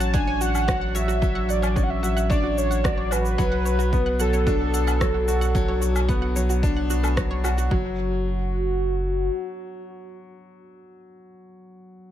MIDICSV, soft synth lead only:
0, 0, Header, 1, 2, 480
1, 0, Start_track
1, 0, Tempo, 540541
1, 1086, Time_signature, 4, 2, 24, 8
1, 10759, End_track
2, 0, Start_track
2, 0, Title_t, "Soft synth lead"
2, 0, Program_c, 0, 80
2, 0, Note_on_c, 0, 81, 123
2, 122, Note_on_c, 0, 80, 111
2, 135, Note_off_c, 0, 81, 0
2, 369, Note_on_c, 0, 78, 117
2, 382, Note_off_c, 0, 80, 0
2, 845, Note_on_c, 0, 76, 110
2, 858, Note_off_c, 0, 78, 0
2, 1332, Note_on_c, 0, 74, 102
2, 1345, Note_off_c, 0, 76, 0
2, 1628, Note_on_c, 0, 78, 79
2, 1642, Note_off_c, 0, 74, 0
2, 1688, Note_on_c, 0, 76, 111
2, 1701, Note_off_c, 0, 78, 0
2, 2047, Note_off_c, 0, 76, 0
2, 2052, Note_on_c, 0, 74, 96
2, 2227, Note_off_c, 0, 74, 0
2, 2227, Note_on_c, 0, 74, 74
2, 2289, Note_on_c, 0, 73, 100
2, 2302, Note_off_c, 0, 74, 0
2, 2531, Note_on_c, 0, 74, 100
2, 2544, Note_off_c, 0, 73, 0
2, 2771, Note_on_c, 0, 71, 115
2, 2784, Note_off_c, 0, 74, 0
2, 3729, Note_off_c, 0, 71, 0
2, 3738, Note_on_c, 0, 69, 106
2, 6336, Note_off_c, 0, 69, 0
2, 6848, Note_on_c, 0, 66, 112
2, 9578, Note_off_c, 0, 66, 0
2, 10759, End_track
0, 0, End_of_file